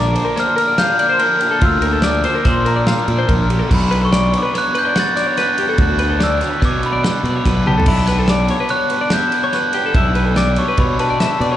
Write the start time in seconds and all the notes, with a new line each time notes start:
Already playing: A#1 A#2 D3 F3 A#3 D4 D5 D6
0.15 A#2 F3 A#3 D4 C5, ride
0.25 A#4
0.36 A#2 F3 A#3 D4 C5 F6, snare, ride
0.57 F3 A#3 D4 A#4 F6, ride
0.67 D5
0.78 A#2 F3 A#3 D4 F5 G6, snare, ride
0.99 F3 A#3 D4 D5 G6, ride
1.09 C5
1.19 A#2 F3 A#3 D4 A#4 F6, ride
1.41 F3 A#3 D4 G4, ride
1.51 A4
1.61 D2 A#2 F3 A#3 D4 F4 E6, kick, ride
1.82 F3 A#3 D4 A#4, ride
1.93 A4
2.02 A#2 F3 A#3 D4 D5 D6, snare, ride
2.24 A#2 F3 A#3 D4 C5, ride
2.35 A#4
2.45 A#2 F3 A#3 D4 C5 C6, kick, snare, ride
2.65 F3 A#3 D4 A#4 A#5, ride
2.76 D5
2.87 A#2 F3 A#3 D4 F5, snare, ride
3.07 A#2 F3 A#3 D4 D5, ride
3.19 C5
3.28 A#1 A#2 F3 A#3 D4 A#4, kick, ride
3.49 F3 A#3 D4 G4, ride
3.59 A4
3.69 B1 B2 F#3 B3 D4 F#4, kick, crash
3.74 B5
3.91 F#3 B3 D4 B4, ride
4.02 A4 C#6
4.12 B2 F#3 B3 D4 D5, snare, ride
4.33 B2 F#3 B3 D4 C#5, ride
4.38 D6
4.43 B4
4.53 B2 F#3 B3 D4 C#5, snare, ride
4.58 F#6
4.74 F#3 B3 D4 B4, ride
4.78 G6
4.85 D5
4.95 B2 F#3 B3 D4 F#5, snare, ride
5.00 A6
5.16 F#3 B3 D4 D5, snare, ride
5.27 C#5
5.37 B2 F#3 B3 D4 B4, snare, ride
5.41 F#6
5.58 F#3 B3 D4 G4, ride
5.69 A4
5.78 D2 B2 F#3 B3 D4 F#4, kick, ride
5.82 F#6
5.99 F#3 B3 D4 B4, ride
6.09 A4
6.20 B2 F#3 B3 D4 D5 E6, snare, ride
6.40 B2 F#3 B3 D4 C#5, snare, ride
6.50 B4
6.61 B2 F#3 B3 D4 C#5, kick, snare, ride
6.65 D6
6.82 F#3 B3 D4 B4, ride
6.86 B5
6.93 D5
7.04 B2 F#3 B3 D4 F#5, snare, ride
7.23 B2 F#3 B3 D4 D5, ride
7.36 C#5
7.46 B1 B2 F#3 B3 D4 B4, kick, snare, ride
7.66 F#3 B3 D4 G4 A5, high tom
7.78 A4, floor tom
7.86 B1 B2 G3 B3 D4 E4 B5, kick, crash, ride
8.07 G3 B3 D4 B4, snare, ride
8.19 A4
8.28 B2 G3 B3 D4 D5 D6, snare, ride
8.48 B2 G3 B3 D4 C#5, ride
8.60 B4
8.69 B2 G3 B3 D4 C#5 F#6, ride
8.90 G3 B3 D4 B4, ride
9.01 D5
9.10 B2 G3 B3 D4 E5 G6, snare, ride
9.32 G3 B3 D4 D5, ride
9.44 C#5
9.52 B2 G3 B3 D4 B4 F#6, snare, ride
9.73 G3 B3 D4 G4, ride
9.86 A4
9.94 B1 B2 G3 B3 D4 E4 E6, kick, ride
10.15 G3 B3 D4 B4, ride
10.26 A4
10.36 B2 G3 B3 D4 D5 D6, snare, ride
10.56 B2 G3 B3 D4 C#5 C#6, ride
10.68 B4
10.77 B2 G3 B3 D4 C#5 B5, kick, ride
10.99 G3 B3 D4 B4 A5, ride
11.10 D5
11.18 B2 G3 B3 D4 E5, snare, ride
11.39 B2 G3 B3 D4 D5, ride
11.52 C#5